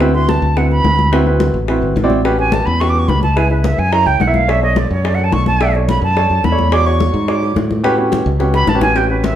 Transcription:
Already playing: fingered electric bass D2
0.00 upright piano C4 E4 F#4 B4, high bongo, high conga
0.15 upright piano C4 E4 F#4 B4, flute C6, high bongo, high conga
0.29 flute A5, high bongo, high conga
0.42 fingered electric bass D2, high conga
0.57 upright piano C4 E4 F#4 B4, flute F#5, high bongo, high conga
0.71 flute B5, high bongo, high conga
0.84 fingered electric bass D2, high bongo, low bongo, high conga
0.99 high bongo, high conga
1.12 upright piano C4 E4 F#4 B4, high bongo, high conga
1.26 upright piano C4 E4 F#4 B4, high bongo, high conga
1.40 high bongo, high conga
1.54 fingered electric bass A1, high conga
1.68 upright piano C4 E4 F#4 B4, high bongo, high conga
1.82 fingered electric bass G1, high bongo, high conga
1.96 fingered electric bass A1, high bongo, low bongo, high conga
2.04 upright piano C4 E4 F#4 D5
2.10 high bongo, high conga
2.24 upright piano C#4 F#4 G4 B4, high bongo, high conga
2.38 upright piano C#4 F#4 G4, flute G#5, high bongo, high conga
2.52 flute A5, high bongo, high conga
2.66 fingered electric bass E2, flute B5, high conga
2.80 upright piano C#4 F#4 G4 B4, flute C#6, high bongo, high conga
2.90 flute D6
2.95 high bongo, high conga
2.99 flute C#6
3.08 fingered electric bass C#2, flute B5, high bongo, low bongo, high conga
3.23 flute A5, high bongo, high conga
3.36 upright piano E4 G#4 B4, flute G#5, high bongo, high conga
3.50 upright piano E4 G#4 B4, flute B4, high bongo, high conga
3.64 flute E5, high bongo, high conga
3.78 fingered electric bass F#2, flute G#5, high conga
3.92 upright piano E4 A#4 C#5, flute A#5, high bongo, high conga
4.06 fingered electric bass C#2, flute G5, high bongo, high conga
4.20 fingered electric bass B1, flute F#5, high bongo, low bongo, high conga
4.27 upright piano E4 A#4 E5
4.34 flute F5, high bongo, high conga
4.48 upright piano D4 A4 C#5, flute E5, high bongo, high conga
4.62 upright piano D4 A4 C#5, flute D#5, high bongo, high conga
4.76 flute D5, high bongo, high conga
4.90 fingered electric bass F#2, flute C#5, high conga
5.04 upright piano D4 A4 C#5, flute D5, high bongo, high conga
5.15 flute F#5, high conga
5.19 high bongo
5.24 flute A5
5.32 fingered electric bass B1, flute C#6, high bongo, low bongo, high conga
5.46 flute A5, high bongo, high conga
5.61 upright piano D4 A4 E5, high bongo, high conga
5.74 upright piano D4 A4 C#5, high bongo, high conga
5.89 flute B5, high bongo, high conga
6.02 fingered electric bass F#2, flute A5, high conga
6.16 upright piano D4 A4 C#5, high bongo, high conga
6.30 fingered electric bass F#2, high bongo, high conga
6.44 fingered electric bass E2, flute B5, high bongo, low bongo, high conga
6.52 upright piano D4 A4 C#5
6.58 high bongo, high conga
6.72 upright piano D4 F#4 G#4 C#5, flute D6, high bongo, high conga
6.86 upright piano D4 F#4 G#4 C#5, flute C#6, high bongo, high conga
7.00 high bongo, high conga
7.14 fingered electric bass G#2, high conga
7.28 upright piano D4 F#4 G#4 C#5, flute D6, high bongo, high conga
7.42 high bongo, high conga
7.56 fingered electric bass A2, high bongo, low bongo, high conga
7.71 high bongo, high conga
7.84 upright piano C#4 F#4 G4 B4, high bongo, high conga
7.98 upright piano C#4 F#4 G4 B4, high bongo, high conga
8.12 high bongo, high conga
8.26 fingered electric bass C#2, high conga
8.40 upright piano C#4 F#4 G4 B4, high bongo, high conga
8.54 flute B5, high bongo, high conga
8.67 fingered electric bass A1, flute A5, low bongo, high conga
8.74 upright piano C#4 F#4 G4 B4
8.81 flute G#5, low bongo, high conga
8.95 upright piano C#4 F#4 G4 B4, flute G5, cowbell, high conga
9.09 upright piano C#4 F#4 G4 B4, flute B4, high conga
9.24 flute E5, cowbell, high conga

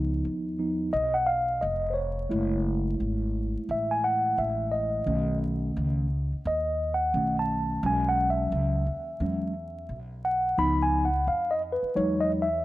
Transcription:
Already playing: upright bass C#2, tine electric piano F3 B3 D#4
0.25 upright bass D#2
0.59 tine electric piano F3 B3 D#4
0.93 upright bass B1, tine electric piano D#5
1.14 tine electric piano F#5
1.27 tine electric piano F5
1.61 upright bass F1, tine electric piano D#5
1.90 tine electric piano C5 C#5
2.29 upright bass F#1, tine electric piano G#3 A3 E4
3.00 upright bass G#1
3.56 muted upright bass stroke
3.69 upright bass A1, tine electric piano E5
3.91 tine electric piano G#5
4.04 tine electric piano F#5
4.38 upright bass A1, tine electric piano E5
4.72 tine electric piano D#5
5.06 upright bass B1, tine electric piano D#3 A3 C#4
5.77 upright bass C#2
6.32 muted upright bass stroke
6.45 upright bass D#2, tine electric piano D#5
6.94 tine electric piano F#5
7.14 upright bass B1, tine electric piano D#3 A3 C#4
7.39 tine electric piano A5
7.83 upright bass B1, tine electric piano F#3 G#3 C#4 G#5
8.09 tine electric piano F#5
8.30 tine electric piano E5
8.52 upright bass C#2
8.86 upright bass D#2
9.20 upright bass E2, tine electric piano F#3 G#3 C#4
9.89 upright bass B1
10.25 tine electric piano F#5
10.58 upright bass C#2, tine electric piano F3 B3 D#4 B5
10.83 tine electric piano G#5
11.05 tine electric piano F#5
11.27 upright bass F2, tine electric piano F5
11.51 tine electric piano D#5
11.72 tine electric piano B4
11.83 muted upright bass stroke
11.95 upright bass E2, tine electric piano F#3 G#3 D#4 C#5
12.21 tine electric piano D#5
12.42 tine electric piano E5

